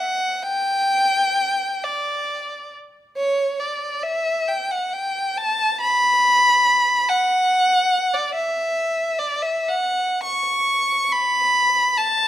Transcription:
violin
Already playing: F#5
0.43 G5
1.84 D5
3.17 C#5
3.59 D5
4.03 E5
4.48 G5
4.71 F#5
4.93 G5
5.38 A5
5.81 B5
7.09 F#5
8.14 D5
8.34 E5
9.19 D5
9.42 E5
9.69 F#5
10.23 C#6
11.12 B5
11.98 A5

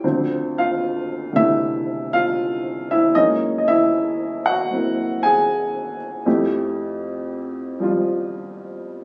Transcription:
upright piano
0.04 D2 D3 F3 C4
0.58 F4 F5
1.33 C3 D3 A3 E4 E5
2.13 F4 F5
2.91 E4 E5
3.15 F#2 E3 G#3 A#3 C#4 D#4 D#5
3.58 D#5
3.68 E4 E5
4.46 F#4 F#5
4.70 F#3 A#3 C4 E4
5.23 G#4 G#5
6.26 F2 A3 E4 G4
7.80 F3 G3 F4

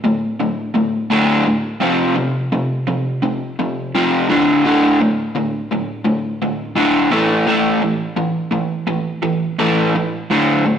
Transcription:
overdriven electric guitar
0.04 D2 A2
0.40 D2 A2
0.74 D2 A2
1.10 D2 A2 D3
1.46 D2 A2
1.80 F2 C3 F3
2.15 F2 C3
2.52 F2 C3
2.88 F2 C3
3.23 F2 C3
3.59 F2 C3
3.95 F2 C3 F3
4.29 D2 A2 D3
4.65 D2 A2 D3
5.00 D2 A2
5.35 D2 A2
5.71 D2 A2
6.04 D2 A2
6.42 D2 A2
6.76 D2 A2 D3
7.11 A2 E3 A3
7.46 A2 E3 A3
7.82 A2 E3
8.16 A2 E3
8.51 A2 E3
8.87 A2 E3
9.22 A2 E3
9.59 A2 E3 A3
9.95 A2 E3
10.31 D2 A2 D3
10.66 D2 A2

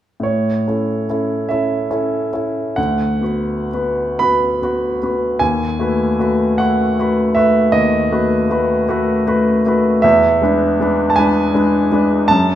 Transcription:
grand piano
0.20 A2 C#5
0.68 C#4 E4 A4
1.09 C#4 E4 A4
1.49 C#4 E4 A4 E5
1.91 C#4 E4 A4
2.33 C#4 E4 A4
2.76 D2 F#5
3.21 B3 F#4 B4
3.74 B3 F#4 B4
4.19 B3 F#4 B4 B5
4.62 B3 F#4 B4
5.03 B3 F#4 B4
5.39 D#2 G#5
5.79 A3 F#4 B4
6.19 A3 F#4 B4
6.58 A3 F#4 B4 F#5
6.99 A3 F#4 B4
7.35 A3 F#4 B4 E5
7.72 D#2 D#5
8.12 A3 F#4 B4
8.50 A3 F#4 B4
8.89 A3 F#4 B4
9.27 A3 F#4 B4
9.66 A3 F#4 B4
10.02 E2 E5
10.42 G#3 D4 B4
10.80 G#3 D4 B4
11.10 A5
11.16 G#3 D4 B4 G#5
11.54 G#3 D4 B4
11.92 G#3 D4 B4
12.28 F#2 A5

